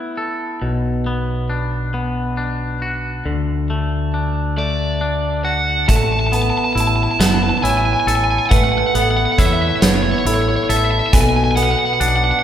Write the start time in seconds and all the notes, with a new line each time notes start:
Already playing: A3 B3 E4
0.17 A4
0.62 B1 B2
1.06 B3
1.50 D4
1.94 B3
2.37 D4
2.82 F#4
3.25 D2 D3
3.70 A3
4.14 D4
4.57 A3 D5
5.01 D4
5.44 F#4 F#5
5.88 A1 A3 A4 A5, kick, closed hi-hat
5.96 A5
6.04 A5
6.12 A5
6.19 A5
6.27 A5
6.32 B3 B4 A5, closed hi-hat
6.42 A5
6.50 A5
6.58 A5
6.64 A5
6.73 A1 E4 A5
6.77 A5, closed hi-hat
6.87 A5
6.96 A5
7.03 A5
7.11 A5
7.19 F#1 B3 A5, snare, closed hi-hat
7.26 A5
7.34 A5
7.43 A5
7.49 A5
7.58 A5
7.63 A1 E4 C#5 G#5, closed hi-hat
7.70 G#5
7.77 G#5
7.85 G#5
7.93 G#5
8.00 G#5
8.07 A1 A4 G#5, closed hi-hat
8.15 G#5
8.24 G#5
8.31 G#5
8.39 G#5
8.46 F#5 G#5
8.51 A1 A3 B4, kick, closed hi-hat
8.57 F#5
8.64 F#5
8.72 F#5
8.78 F#5
8.87 F#5
8.94 A1 B3 A4 F#5, closed hi-hat
9.02 F#5
9.11 F#5
9.17 F#5
9.25 F#5
9.32 F#5
9.38 E2 E4 C#5 E5, kick, closed hi-hat
9.46 E5
9.53 E5
9.62 E5
9.69 E5
9.76 E5
9.81 F#1 B3 B4 C#5, snare, closed hi-hat
9.88 C#5
9.96 C#5
10.03 C#5
10.11 C#5
10.19 C#5
10.25 A1 E4 A4 C#5, closed hi-hat
10.34 C#5
10.42 C#5
10.49 C#5
10.56 C#5
10.64 C#5
10.69 A1 A4 E5, closed hi-hat
10.77 E5
10.85 E5
10.91 E5
10.99 E5
11.06 E5
11.13 B1 B2 A4 G#5, kick, closed hi-hat
11.21 G#5
11.29 G#5
11.36 G#5
11.44 G#5
11.51 G#5
11.56 B3 B4 F#5, closed hi-hat
11.63 F#5
11.71 F#5
11.79 F#5
11.85 F#5
11.93 F#5
12.00 B1 D4 F#5, closed hi-hat
12.08 F#5
12.16 F#5
12.24 F#5
12.31 F#5
12.39 F#5